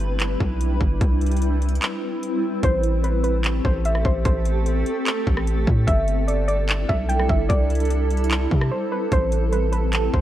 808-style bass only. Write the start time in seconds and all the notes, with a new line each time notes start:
Already playing: G1
0.41 B1
0.81 G1
1.01 C2
2.63 A1
3.65 A1
4.05 A1
4.25 A1
5.27 A1
5.67 A2
5.88 G1
6.89 B1
7.29 G1
7.50 C2
8.51 C3
9.12 A1
10.13 A1